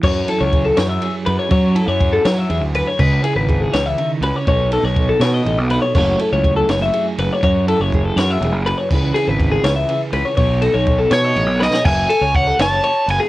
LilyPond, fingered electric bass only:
\new Staff \with { instrumentName = "Fingered electric bass" } { \clef bass \time 6/8 \key fis \dorian \tempo 4. = 81 fis,8 r16 cis,8. fis,8 r8 fis,16 r16 | fis8. fis,8. fis8 e,16 d,8 r16 | cis,8 r16 gis,,8. cis,8 r8 cis,16 r16 | b,,8. b,,8. b,8 a,,16 b,,8 r16 |
fis,,8 r16 cis,8. fis,,8 r8 fis,,16 r16 | fis,8. fis,,8. fis,8 e,,16 fis,,8 r16 | cis,8 r16 gis,,8. cis,8 r8 cis,16 r16 | b,,8. b,,8. b,8 a,,16 b,,8 r16 |
fis,,8 r16 cis,8. fis,,8 r8 fis,,16 r16 | }